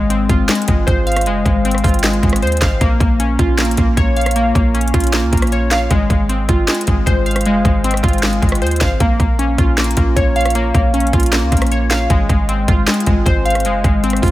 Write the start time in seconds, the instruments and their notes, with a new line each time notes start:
Already playing: 808-style bass G#1, synth keys G#3
0.10 synth keys C4, closed hi-hat
0.29 808-style bass G#1, synth keys F4, kick, closed hi-hat
0.49 synth keys G#3, snare, clap, closed hi-hat
0.55 closed hi-hat
0.62 closed hi-hat
0.68 808-style bass G#1, synth keys G#3, kick, closed hi-hat
0.87 808-style bass G#1, synth keys C5, kick, closed hi-hat
1.07 synth keys F5, closed hi-hat
1.12 closed hi-hat
1.17 cross-stick, closed hi-hat
1.21 closed hi-hat
1.26 808-style bass F#1, synth keys G#3, closed hi-hat
1.46 808-style bass G#1, synth keys G#3, kick, closed hi-hat
1.65 synth keys C4, closed hi-hat
1.71 cross-stick, closed hi-hat
1.78 closed hi-hat
1.84 808-style bass G#1, synth keys F4, kick, closed hi-hat, open hi-hat
1.89 closed hi-hat
1.94 closed hi-hat
1.99 closed hi-hat
2.04 synth keys G#3, snare, clap, closed hi-hat
2.13 closed hi-hat
2.23 808-style bass G#1, synth keys G#3, kick, closed hi-hat
2.30 cross-stick, closed hi-hat
2.36 closed hi-hat
2.42 808-style bass D#2, synth keys C5, closed hi-hat
2.47 closed hi-hat
2.52 closed hi-hat
2.57 closed hi-hat
2.62 808-style bass G#1, synth keys F5, kick, snare, clap, closed hi-hat
2.81 808-style bass A#1, synth keys A#3, kick, closed hi-hat
3.00 808-style bass A#1, synth keys A#3, kick, closed hi-hat
3.20 synth keys C#4, closed hi-hat
3.39 808-style bass A#1, synth keys F4, kick, closed hi-hat
3.58 synth keys A#3, snare, clap, closed hi-hat
3.65 closed hi-hat
3.71 closed hi-hat
3.77 808-style bass A#1, synth keys A#3, kick, closed hi-hat
3.97 808-style bass A#1, synth keys C#5, kick, closed hi-hat
4.17 synth keys F5, closed hi-hat
4.21 closed hi-hat
4.26 cross-stick, closed hi-hat
4.31 closed hi-hat
4.36 synth keys A#3, closed hi-hat
4.55 808-style bass A#1, synth keys A#3, kick, closed hi-hat
4.74 synth keys C#4, closed hi-hat
4.81 closed hi-hat
4.88 closed hi-hat
4.94 808-style bass A#1, synth keys F4, kick, closed hi-hat
5.00 closed hi-hat
5.04 closed hi-hat
5.07 closed hi-hat
5.13 synth keys A#3, snare, clap, closed hi-hat
5.23 808-style bass C#2
5.32 808-style bass A#1, synth keys A#3, kick, closed hi-hat
5.37 closed hi-hat
5.42 cross-stick, closed hi-hat
5.47 closed hi-hat
5.52 synth keys C#5, closed hi-hat
5.71 synth keys F5, snare, clap, closed hi-hat
5.91 808-style bass G#1, synth keys G#3, kick, closed hi-hat
6.10 808-style bass G#1, synth keys G#3, kick, closed hi-hat
6.29 synth keys C4, closed hi-hat
6.49 808-style bass G#1, synth keys F4, kick, closed hi-hat
6.68 synth keys G#3, snare, clap, closed hi-hat
6.75 closed hi-hat
6.81 closed hi-hat
6.87 808-style bass G#1, synth keys G#3, kick, closed hi-hat
7.06 808-style bass G#1, synth keys C5, kick, closed hi-hat
7.26 synth keys F5, closed hi-hat
7.31 closed hi-hat
7.36 cross-stick, closed hi-hat
7.41 closed hi-hat
7.46 808-style bass F#1, synth keys G#3, closed hi-hat
7.65 808-style bass G#1, synth keys G#3, kick, closed hi-hat
7.84 synth keys C4, closed hi-hat
7.91 cross-stick, closed hi-hat
7.97 closed hi-hat
8.03 808-style bass G#1, synth keys F4, kick, closed hi-hat, open hi-hat
8.09 closed hi-hat
8.13 closed hi-hat
8.18 closed hi-hat
8.23 synth keys G#3, snare, clap, closed hi-hat
8.33 closed hi-hat
8.42 808-style bass G#1, synth keys G#3, kick, closed hi-hat
8.49 cross-stick, closed hi-hat
8.55 closed hi-hat
8.62 808-style bass D#2, synth keys C5, closed hi-hat
8.67 closed hi-hat
8.71 closed hi-hat
8.76 closed hi-hat
8.81 808-style bass G#1, synth keys F5, kick, snare, clap, closed hi-hat
9.00 808-style bass A#1, synth keys A#3, kick, closed hi-hat
9.20 808-style bass A#1, synth keys A#3, kick, closed hi-hat
9.39 synth keys C#4, closed hi-hat
9.58 808-style bass A#1, synth keys F4, kick, closed hi-hat
9.78 synth keys A#3, snare, clap, closed hi-hat
9.84 closed hi-hat
9.91 closed hi-hat
9.97 808-style bass A#1, synth keys A#3, kick, closed hi-hat
10.16 808-style bass A#1, synth keys C#5, kick, closed hi-hat
10.36 synth keys F5, closed hi-hat
10.41 closed hi-hat
10.46 cross-stick, closed hi-hat
10.50 closed hi-hat
10.55 synth keys A#3, closed hi-hat
10.74 808-style bass A#1, synth keys A#3, kick, closed hi-hat
10.94 synth keys C#4, closed hi-hat
11.00 closed hi-hat
11.07 closed hi-hat
11.13 808-style bass A#1, synth keys F4, kick, closed hi-hat
11.20 closed hi-hat
11.23 closed hi-hat
11.26 closed hi-hat
11.32 synth keys A#3, snare, clap, closed hi-hat
11.42 808-style bass C#2
11.52 808-style bass A#1, synth keys A#3, kick, closed hi-hat
11.57 closed hi-hat
11.62 cross-stick, closed hi-hat
11.67 closed hi-hat
11.72 synth keys C#5, closed hi-hat
11.91 synth keys F5, snare, clap, closed hi-hat
12.10 808-style bass G#1, synth keys G#3, kick, closed hi-hat
12.29 808-style bass G#1, synth keys G#3, kick, closed hi-hat
12.49 synth keys C4, closed hi-hat
12.68 808-style bass G#1, synth keys F4, kick, closed hi-hat
12.87 synth keys G#3, snare, clap, closed hi-hat
12.94 closed hi-hat
13.00 closed hi-hat
13.06 808-style bass G#1, synth keys G#3, kick, closed hi-hat
13.26 808-style bass G#1, synth keys C5, kick, closed hi-hat
13.45 synth keys F5, closed hi-hat
13.50 closed hi-hat
13.55 cross-stick, closed hi-hat
13.60 closed hi-hat
13.65 808-style bass F#1, synth keys G#3, closed hi-hat
13.84 808-style bass G#1, synth keys G#3, kick, closed hi-hat
14.04 synth keys C4, closed hi-hat
14.10 cross-stick, closed hi-hat
14.17 closed hi-hat
14.22 808-style bass G#1, synth keys F4, kick, closed hi-hat, open hi-hat
14.28 closed hi-hat